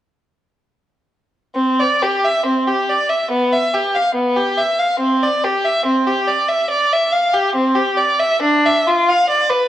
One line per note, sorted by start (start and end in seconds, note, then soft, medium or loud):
1.56 1.79 C4 medium
1.80 2.03 D5 soft
2.03 2.24 G4 soft
2.25 2.46 E5 soft
2.46 2.67 C4 soft
2.68 2.89 G4 soft
2.90 3.10 D5 soft
3.09 3.30 E5 soft
3.31 3.51 B3 medium
3.53 3.73 E5 soft
3.74 3.94 G4 soft
3.95 4.16 F5 soft
4.15 4.36 B3 soft
4.37 4.58 G4 soft
4.58 4.79 E5 soft
4.79 5.00 F5 soft
5.00 5.21 C4 medium
5.23 5.44 D5 soft
5.44 5.64 G4 soft
5.65 5.86 E5 soft
5.86 6.06 C4 soft
6.07 6.28 G4 soft
6.28 6.49 D5 soft
6.49 6.70 E5 soft
6.71 6.91 D5 medium
6.93 7.13 E5 soft
7.13 7.34 F5 soft
7.34 7.55 G4 soft
7.56 7.76 C4 soft
7.75 7.97 G4 soft
7.98 8.19 D5 soft
8.20 8.42 E5 soft
8.42 8.64 D4 medium
8.66 8.87 E5 soft
8.87 9.08 F4 soft
9.09 9.29 F5 medium
9.30 9.50 D5 medium
9.50 9.68 B4 soft